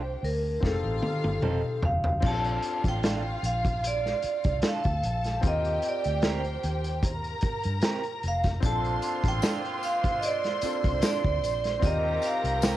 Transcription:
Already playing: fingered electric bass C2, grand piano C4 D4 F4 A5, string section G4 G5, vibraphone C5
0.23 fingered electric bass D2, vibraphone A#4, open hi-hat
0.60 fingered electric bass F1, grand piano C4 D#4, string section F4 F5, vibraphone A4, kick, snare
0.64 grand piano G4 G#4
0.72 grand piano A4
0.84 fingered electric bass A1
1.02 high tom
1.24 fingered electric bass G1, high tom
1.42 fingered electric bass F1, clean electric guitar C4 D#4 A4, mid tom
1.83 fingered electric bass F1, vibraphone F5, floor tom
2.04 floor tom
2.20 fingered electric bass A#1, grand piano C4 D4 F4, string section F4 F5, kick, crash
2.25 grand piano G4, vibraphone A5
2.32 grand piano A4
2.44 closed hi-hat
2.62 closed hi-hat
2.84 fingered electric bass A1, kick, closed hi-hat
2.88 vibraphone G5
3.03 clean electric guitar D4 F4 A4, snare, closed hi-hat
3.43 fingered electric bass A#1, vibraphone F5, closed hi-hat
3.65 kick, closed hi-hat
3.84 vibraphone D5, closed hi-hat
4.06 snare
4.22 muted fingered electric bass stroke, closed hi-hat
4.44 fingered electric bass C2, kick, closed hi-hat
4.62 clean electric guitar D4 F4 A4, string section A4 A5, snare, closed hi-hat
4.67 vibraphone F5
4.83 fingered electric bass D2, kick, closed hi-hat
5.03 fingered electric bass A#1, closed hi-hat
5.24 snare, closed hi-hat
5.41 fingered electric bass D#2, grand piano C4 F4 G4, string section G4 G5, kick, closed hi-hat
5.47 grand piano A#4, vibraphone D#5
5.65 closed hi-hat
5.82 closed hi-hat
5.88 vibraphone D5
6.04 fingered electric bass D2, closed hi-hat
6.22 clean electric guitar C4 G4 A#4, snare, closed hi-hat
6.28 vibraphone C5
6.44 closed hi-hat
6.63 fingered electric bass D#2, closed hi-hat
6.84 closed hi-hat
7.03 string section A#4 A#5, kick, closed hi-hat
7.24 closed hi-hat
7.41 muted fingered electric bass stroke, kick, closed hi-hat
7.63 fingered electric bass G2, closed hi-hat
7.82 clean electric guitar C4 G4 A#4, snare, closed hi-hat
8.03 closed hi-hat
8.23 fingered electric bass F1, closed hi-hat
8.28 vibraphone F5
8.44 kick, snare, closed hi-hat
8.60 fingered electric bass A#1, horn section D3 F3 A#3 F4, grand piano C4 D4 F4, string section C5 C6, kick, closed hi-hat, tambourine
8.66 grand piano A4, vibraphone A5
8.84 closed hi-hat
9.02 closed hi-hat, tambourine
9.24 fingered electric bass A1, kick, closed hi-hat
9.28 vibraphone G5
9.42 clean electric guitar D4 F4 A4, snare, closed hi-hat, tambourine
9.65 closed hi-hat
9.83 vibraphone F5, closed hi-hat, tambourine
10.04 kick, closed hi-hat
10.19 vibraphone D#5, closed hi-hat, tambourine
10.25 vibraphone D5
10.44 snare, closed hi-hat
10.61 grand piano C4 D4 F4 A4, muted fingered electric bass stroke, closed hi-hat, tambourine
10.84 fingered electric bass C2, kick, closed hi-hat
11.02 clean electric guitar D4 F4 A4, snare, closed hi-hat, tambourine
11.06 vibraphone D5
11.24 fingered electric bass D2, kick
11.43 fingered electric bass A#1, closed hi-hat, tambourine
11.64 snare, closed hi-hat
11.79 fingered electric bass D#2, horn section D#3 G3 C4 G4, grand piano C4 F4 G4, string section A#4 A#5, kick, closed hi-hat, tambourine
11.85 grand piano A#4, vibraphone D#5
12.22 vibraphone F5, closed hi-hat, tambourine
12.44 fingered electric bass C2, closed hi-hat
12.62 clean electric guitar C4 G4 A#4, vibraphone G5, snare, closed hi-hat, tambourine

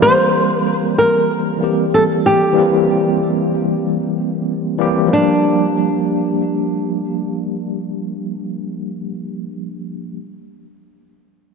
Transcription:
Already playing: tine electric piano E3
0.00 tine electric piano G3 A#3 C4 G4, nylon-string guitar C5
0.66 nylon-string guitar A#4
0.98 nylon-string guitar A#4
1.57 tine electric piano E3 G3 A#3
1.62 tine electric piano C4 G4
1.94 nylon-string guitar A4
2.26 nylon-string guitar G4
2.53 tine electric piano E3 G3 A#3
2.58 tine electric piano C4 G4
4.78 tine electric piano E3 G3 A#3 C4 G4
5.07 tine electric piano F3 G3
5.11 tine electric piano A#3 D4, nylon-string guitar D4
5.16 tine electric piano G4

